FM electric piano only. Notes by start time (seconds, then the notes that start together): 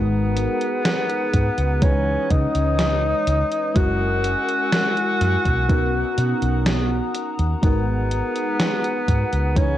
Already playing: G#3 B3 D#4 F#4 A#4
1.81 E3 G#3 C#4 D#4 B4
3.74 G#3 C#4 E4 F#4 A#4
5.68 B3 C#4 D#4 F#4 A#4
7.61 G#3 B3 D#4 F#4 A#4
9.55 E3 G#3 C#4 D#4 B4